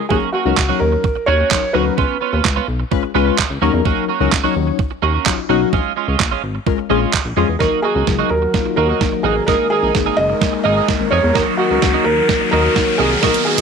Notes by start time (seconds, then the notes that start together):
0.09 D#2 F#3 A#3 C#4 D#4 F#4 G#4 A#4, kick
0.32 A#3 C#4 F#4
0.45 C#2 F#3 A#3 C#4 D#4 F#4 A#4
0.57 C#2, kick, snare, clap
0.69 F#3 A#3 C#4 D#4 F#4 C#5
0.79 D#2 A#4, muted clean electric guitar stroke
0.92 muted clean electric guitar stroke
1.04 muted clean electric guitar stroke, kick
1.16 muted clean electric guitar stroke
1.26 D#2 A#3 C#4 F#4 C#5
1.39 A#3 C#4 F#4
1.51 F#3 C#4 D#4 A#4, kick, snare, clap
1.63 muted clean electric guitar stroke
1.73 D2 F#3 A#3 C#4 D#4 F#4 B4
1.86 muted clean electric guitar stroke
1.97 C#2 B3 C#4 F4, kick
2.21 B3 C#4 F4
2.33 D#2 B3 C#4 F4
2.45 C#2, kick, snare, clap
2.56 B3 C#4 F4
2.68 B1, muted clean electric guitar stroke
2.80 muted clean electric guitar stroke
2.91 G#3 C#4 F4 B4, muted clean electric guitar stroke, kick
3.03 muted clean electric guitar stroke
3.15 C#2 G#3 B3 C#4 F4 B4
3.26 B3 C#4 F4
3.38 kick, snare, clap
3.50 C#2, muted clean electric guitar stroke
3.62 D#2 F#3 A#3 C#4 D#4 F#4 A#4
3.73 E2, muted clean electric guitar stroke
3.85 D#2 A#3 C#4 F#4, kick
4.09 A#3 C#4 F#4
4.20 C#2 F#3 A#3 C#4 D#4 F#4 A#4
4.32 C#2, kick, snare, clap
4.44 F#3 A#3 C#4 D#4 F#4 C#5
4.56 D#2
4.67 muted clean electric guitar stroke
4.79 muted clean electric guitar stroke, kick
4.91 muted clean electric guitar stroke
5.02 D#2 A#3 C#4 F#4
5.14 A#3 C#4 F#4
5.26 F#3 C#4 D#4 F4, kick, snare, clap
5.38 muted clean electric guitar stroke
5.49 B1 F#3 A#3 C#4 D#4 F#4
5.61 muted clean electric guitar stroke
5.73 A#1 G#3 C#4 F4, kick
5.96 G#3 C#4 F4
6.08 C#2 G#3 C#4 F4
6.20 A#1, muted clean electric guitar stroke, kick, snare, clap
6.31 G#3 C#4 F4
6.43 G#1, muted clean electric guitar stroke
6.55 muted clean electric guitar stroke
6.66 G#3 C#4 F4 A#4, muted clean electric guitar stroke, kick
6.78 muted clean electric guitar stroke
6.90 A#1 G#3 C#4 F4 G#4
7.02 G#3 C#4 F4
7.13 kick, snare, clap
7.25 A#1, muted clean electric guitar stroke
7.37 F2 G#3 C#4 F4 G#4
7.49 E2, muted clean electric guitar stroke
7.59 D#2 D#3 F#3 A#3 D#4 F#4 A#4, kick, snare, riser
7.82 A#3 D#4 F#4 G#4
7.95 C#2 A#3 D#4 F#4
8.07 C#2 F#3 A#3 D#4 A#4, muted clean electric guitar stroke, kick, snare
8.19 A#3 D#4 F#4
8.29 D#2 A#4, muted clean electric guitar stroke
8.42 muted clean electric guitar stroke
8.54 F#3 A#3 D#4 F4, muted clean electric guitar stroke, kick, snare
8.65 muted clean electric guitar stroke
8.76 D#2 A#3 D#4 F#4 A#4
8.89 A#3 D#4 F#4
9.01 F#3 A#3 D#4 A#4, kick, snare
9.12 muted clean electric guitar stroke
9.23 A1 A#3 D#4 F#4 G#4
9.36 muted clean electric guitar stroke
9.46 G#1 G#3 A#3 D#4 G#4 A#4, kick, snare
9.70 A#3 D#4 G#4
9.83 A#1 A#3 D#4 G#4
9.95 G#1 G#3 A#3 D#4 A#4, muted clean electric guitar stroke, kick, snare
10.06 A#3 D#4 G#4
10.17 F#1 D#5, muted clean electric guitar stroke
10.30 muted clean electric guitar stroke
10.41 G#3 A#3 D#4 A#4, muted clean electric guitar stroke, kick, snare
10.53 muted clean electric guitar stroke
10.64 G#1 A#3 D#4 G#4 D#5
10.76 A#3 D#4 G#4
10.88 G#3 A#3 D#4 A#4, kick, snare
11.00 G#1, muted clean electric guitar stroke
11.11 F2 A#3 D#4 G#4 C#5
11.23 E2, muted clean electric guitar stroke
11.34 D#2 F#3 A#3 D#4 F#4 A#4, kick, snare
11.57 A#3 D#4 F#4
11.70 C#2 A#3 D#4 F#4
11.82 C#2 F#3 A#3 D#4 A#4, muted clean electric guitar stroke, kick, snare
11.94 A#3 D#4 F#4
12.04 D#2 A#4, muted clean electric guitar stroke
12.17 muted clean electric guitar stroke
12.29 F#3 A#3 D#4 A#4, muted clean electric guitar stroke, kick, snare
12.41 muted clean electric guitar stroke
12.51 D#2 A#3 D#4 F#4 A#4
12.64 A#3 D#4 F#4
12.76 F#3 A#3 D#4 C#5, kick, snare
12.87 muted clean electric guitar stroke
12.98 C2 A#3 D#4 F#4 G#4
13.11 muted clean electric guitar stroke
13.21 B1 F#3 A#3 B3 D#4 F#4 A#4, kick, snare
13.34 closed hi-hat
13.45 A#3 D#4 F#4 G#4
13.58 C#2 F#4